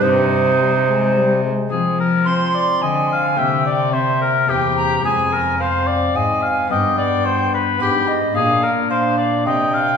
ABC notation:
X:1
M:3/4
L:1/8
Q:1/4=108
K:Cm
V:1 name="Recorder"
c4- c z | z2 c'2 a2 | g2 =e2 g b | a2 f2 a2 |
g4 =b e | f z f2 g2 |]
V:2 name="Oboe"
E4- E z | A B c d e f | =e d c B G2 | A B c d e f |
e d c =B G z | A B c d e f |]
V:3 name="Trombone"
G,2 G, A, G, A, | C2 C4 | C2 C2 C2 | C2 C4 |
=B,4 B, z | D6 |]
V:4 name="Harp"
[EG]6 | [A,CF]6 | [B,CG]4 [B,CG]2 | [A,CF]6 |
[=B,D]4 [B,D]2 | D6 |]
V:5 name="Harp" clef=bass
C,6 | F,4 D,2 | C,4 =E,,2 | F,,4 A,,2 |
G,4 A,,2 | B,,4 C,2 |]
V:6 name="Cello" clef=bass
C,4- C, z | F,4 D,2 | C,4 =E,,2 | F,,4 A,,2 |
G,,4 A,,2 | B,,4 C,2 |]